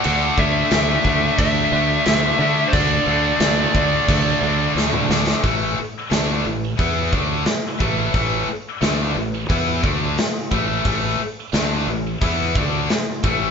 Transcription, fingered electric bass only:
\new Staff \with { instrumentName = "Fingered electric bass" } { \clef bass \time 4/4 \key d \dorian \tempo 4 = 89 d,8 d,8 d,8 d,8 d,8 d,8 d,8 d8 | d,8 d,8 d,8 d,8 d,8 d,8 d,8 d,8 | a,,8 r8 d,8 a,,8 e,8 d,8 r8 a,,8 | a,,8 r8 d,8 a,,8 e,8 d,8 r8 a,,8 |
a,,8 r8 d,8 a,,8 e,8 d,8 r8 a,,8 | }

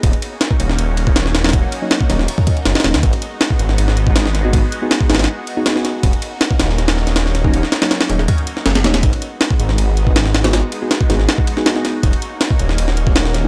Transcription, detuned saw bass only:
\new Staff \with { instrumentName = "Detuned saw bass" } { \clef bass \time 4/4 \key gis \minor \tempo 4 = 160 dis,,16 r4 r16 dis,,8 dis,,8. dis,,4~ dis,,16 | dis,,16 r4 r16 dis,,8 r4 fis,,16 r16 dis,,16 dis,16 | gis,,16 r4 r16 gis,,8 gis,,8. gis,,4~ gis,,16 | gis,,16 r4 r16 gis,,8 r2 |
dis,,16 r4 r16 dis,,8 dis,,8. dis,,4~ dis,,16 | dis,,16 r4 r16 dis,,8 r4 fis,,8 dis,,8 | gis,,16 r4 r16 gis,,8 gis,,8. gis,,4~ gis,,16 | gis,,16 r4 r16 gis,,8 r2 |
dis,,16 r4 r16 dis,,8 dis,,8. dis,,4~ dis,,16 | }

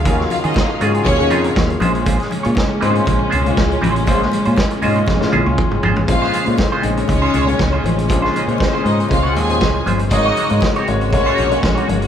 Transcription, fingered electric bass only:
\new Staff \with { instrumentName = "Fingered electric bass" } { \clef bass \time 4/4 \key bes \minor \tempo 4 = 119 ees,8 r16 ees16 r8 aes,8 ees,8 f,8 ees,8 bes,,8~ | bes,,8 r16 bes,16 r8 aes,8 bes,,8 des,8 des,8 a,,8 | bes,,8 r16 bes,16 r8 aes,8 f,16 r16 bes,,16 des,16 r16 g,,16 aes,,16 a,,16 | bes,,8 r16 bes,16 r8 bes,,8 des,8 des,8 des,8 a,,8 |
bes,,8 r16 bes,16 r8 aes,8 des,8 ees,8 des,8 g,,8 | aes,,8 r16 aes,16 r8 aes,,8 bes,,8 bes,,8 bes,,8 g,,8 | }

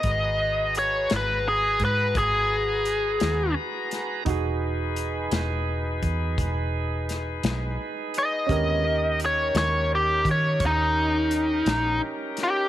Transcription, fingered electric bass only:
\new Staff \with { instrumentName = "Fingered electric bass" } { \clef bass \time 12/8 \key gis \minor \tempo 4. = 57 gis,,4. gis,,4 gis,8 gis,,4. dis,8 r4 | e,,4. e,,4 e,8 e,,4. b,,8 r4 | dis,4. dis,4 dis8 dis,4. ais,,8 r4 | }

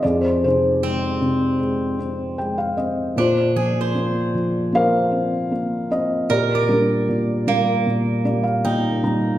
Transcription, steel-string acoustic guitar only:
\new Staff \with { instrumentName = "Steel-string acoustic guitar" } { \time 4/4 \key ees \major \tempo 4 = 77 f'8 r8 c'2. | d'8 aes'16 c''2.~ c''16 | bes'16 d''4~ d''16 bes4. ees'4 | }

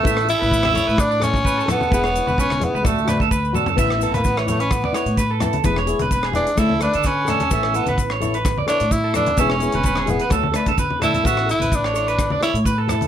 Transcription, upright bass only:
\new Staff \with { instrumentName = "Upright bass" } { \clef bass \time 4/4 \key a \major \tempo 4 = 128 a,,8. a,,4 a,2 r16 | e,,8. e,,4 cis,16 d,2 | a,,8. a,,2 a,4~ a,16 | e,,8. e,,4~ e,,16 d,8. d4~ d16 |
a,,8. a,,2 a,4~ a,16 | e,,8. e,,4~ e,,16 d,8. d4~ d16 | a,,8. a,,2 a,4~ a,16 | }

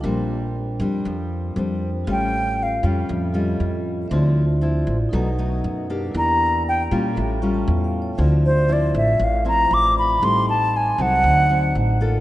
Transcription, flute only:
\new Staff \with { instrumentName = "Flute" } { \time 4/4 \key d \minor \tempo 4 = 118 r1 | g''4 eis''8 r2 r8 | r1 | bes''4 g''8 r2 r8 |
r8 c''8 d''8 e''8 f''8 bes''8 d'''8 b''8 | c'''8 a''8 gis''8 fis''4. r4 | }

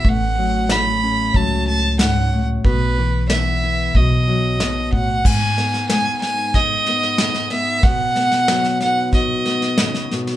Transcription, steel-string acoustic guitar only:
\new Staff \with { instrumentName = "Steel-string acoustic guitar" } { \clef bass \time 4/4 \key gis \phrygian \tempo 4 = 92 << { r4 a8 cis'2~ cis'8 | r4 b8 e'8 r2 | r8 b4 dis'8 gis'8 b8 gis'8 b8 | r8 b4 dis'8 fis'8 b4. | } \\ { a,8 fis4. fis4 gis,8 a,8 | b,8 e4. b,8 fis8 b,8 a,8 | gis,4 gis2. | b,4 fis2 cis8 b,8 | } >> }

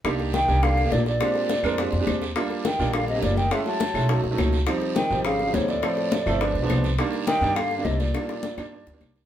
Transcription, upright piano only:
\new Staff \with { instrumentName = "Upright piano" } { \time 4/4 \key c \minor \tempo 4 = 208 <bes d' ees' g'>4 r8 <bes d' ees' g'>16 r16 <bes d' ees' g'>8 r16 <bes d' ees' g'>8. r8 | <aes c' d' g'>4 r8 <aes c' d' bes'>16 r16 <aes c' d' g'>8 r16 <aes c' d' g'>8. r8 | <g bes d' f'>4 r8 <g bes d' f'>16 r16 <g bes d' f'>8 r16 <g bes d' g'>8. r8 | <aes a cis' e'>4 r8 <aes a cis' e'>16 r16 <fis a cis' dis'>8 r16 <fis a cis' dis'>8. r8 |
<f g c' ees'>4 r8 <f g c' ees'>16 r16 <f g c' ees'>8 r16 <f g c' ees'>8. r8 | <f a c' e'>4 r8 <f a c' e'>16 r16 <f aes b d'>8 r16 <f aes b d'>8. r8 | <ees g bes d'>4 r8 <ees g bes d'>16 r16 <ees g bes d'>8 r16 <ees g bes d'>8. r8 | <ees g bes d'>4 r8 <ees g bes d'>16 r16 <ees g bes d'>8 r16 <ees g bes d'>8. r8 | }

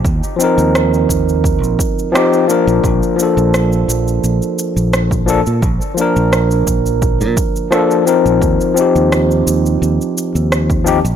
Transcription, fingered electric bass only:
\new Staff \with { instrumentName = "Fingered electric bass" } { \clef bass \time 4/4 \key ees \lydian \tempo 4 = 86 ees,16 r8 ees,8. ees,8. bes,,16 r4 r16 bes,,16 | bes,,16 r8 bes,,8. bes,,8 bes,,16 r8 bes,,4 bes,16 | bes,,16 r8 bes,,8. bes,,8. bes,16 r4 r16 bes,,16 | ees,16 r8 ees,8. ees,8 ees,16 r8 ees,4 bes,,16 | }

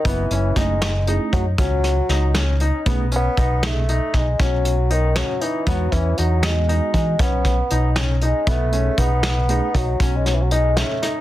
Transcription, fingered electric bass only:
\new Staff \with { instrumentName = "Fingered electric bass" } { \clef bass \time 11/8 \key b \mixolydian \tempo 4 = 118 fis,,8 fis,,8 fis,,4. fis,8 cis,4 cis,4. | b,,4 b,,4. b,,8 b,,2 r8 | e,8 e,8 e,4. e8 b,,4 b,,4. | b,,4 b,,4. b,,8 b,,2 r8 | }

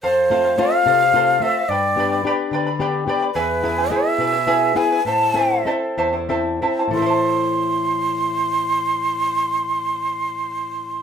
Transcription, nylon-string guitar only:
\new Staff \with { instrumentName = "Nylon-string guitar" } { \time 6/8 \key a \minor \tempo 4. = 68 f,8 <a c' f'>8 <a c' f'>8 c8 <a c' f'>8 <a c' f'>8 | g,8 <b d' g'>8 <b d' g'>8 d8 <b d' g'>8 <b d' g'>8 | e,8 <b e' gis'>8 <b e' gis'>8 b,8 <b e' gis'>8 <b e' gis'>8 | a,8 <c' e' a'>8 <c' e' a'>8 e,8 <c' e' a'>8 <c' e' a'>8 |
<a, e e' a' c'' a''>2.~ | <a, e e' a' c'' a''>2. | }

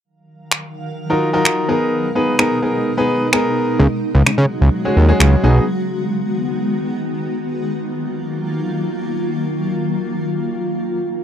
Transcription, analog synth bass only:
\new Staff \with { instrumentName = "Analog synth bass" } { \clef bass \time 4/4 \key ees \minor \tempo 4 = 128 r1 | r1 | des,16 r8 des,16 des16 des16 r16 des,16 r8 ees,8 des,8 b,,8 | r1 |
r1 | r1 | }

